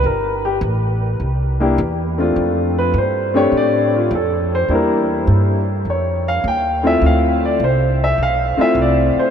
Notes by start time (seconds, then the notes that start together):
0.04 G1 A#4
0.45 G4
0.61 A1
1.20 C2
1.60 A#3 D4 E4 G4
1.78 E2
2.18 A3 C4 D4 F4
2.36 F2
2.78 B4
2.94 G2
2.98 C5
3.34 A3 C4 D4 G4 C#5
3.52 A2
3.57 D5
3.96 F4
4.11 F2
4.15 A4
4.55 C5
4.68 E2 G3 A#3 D4 E4
4.75 A#4
5.27 G2
5.85 F2
5.90 C#5
6.28 F5
6.44 D#2 G5
6.83 A3 C4 E4 F4 E5
7.01 D2
7.06 F5
7.45 D5
7.60 C2
7.64 C5
8.04 E5
8.18 B1
8.23 F5
8.57 A3 C4 E4 F4 E5, muted upright bass stroke
8.75 C2
8.81 D5
9.15 muted upright bass stroke
9.19 C5